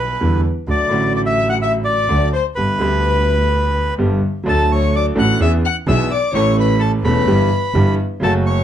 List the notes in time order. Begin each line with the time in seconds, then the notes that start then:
Already playing: B1 B2 D3 G3 B3 E4 B4
0.20 E2 D3 E3 G3 B3 E4
0.67 D2 D3 F#3 A3 F#4 D5
0.89 A1 A2 D3 F#3 A3
0.94 F#4
1.16 D5
1.26 E5
1.49 F#5
1.62 E5
1.84 D5
2.09 D2 D3 F#3 A3 F#4
2.33 C5
2.55 G1 G2 D3 G3 B3 G4 B4
2.79 D2 D3 G3 B3
2.83 G4
3.98 G1 G2 D3 G3 B3 G4
4.44 D2 D3 F#3 A3 D4
4.48 A4 A5
4.72 C#5 C#6
4.95 D5 D6
5.15 A1 A2 F#3 A3 D4 A4 F#5 F#6
5.40 E2 E3 B3 D4 G#4 E5 E6
5.65 F#5 F#6
5.87 B1 B2 E3 B3 D4 G#4 E5 E6
6.11 D5 D6
6.32 A1 A2 E3 A3 C#4 A4 C#5 C#6
6.58 B4 B5
6.80 A4 A5
7.03 E1 E2 E3 A3 C#4 A4 B4 B5
7.27 G1 G2 E3 G3 B3 G4
7.74 G1 G2 E3 G3 B3 G4
8.20 F#1 F#2 C#3 F#3 A3 A4 A5
8.24 F#4
8.46 C#5 C#6